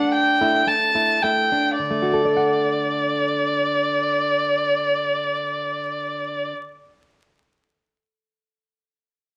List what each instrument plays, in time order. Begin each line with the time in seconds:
Already playing: nylon-string guitar D4, violin F#5
0.14 violin G5
0.41 nylon-string guitar A3 E4
0.67 nylon-string guitar A3, violin A5
0.95 nylon-string guitar A3 E4
1.23 nylon-string guitar A3 E4, violin G5
1.52 nylon-string guitar D4
1.77 nylon-string guitar D3, violin D5
1.90 nylon-string guitar A3
2.02 nylon-string guitar F#4
2.14 nylon-string guitar A4
2.25 nylon-string guitar D5
2.37 nylon-string guitar F#5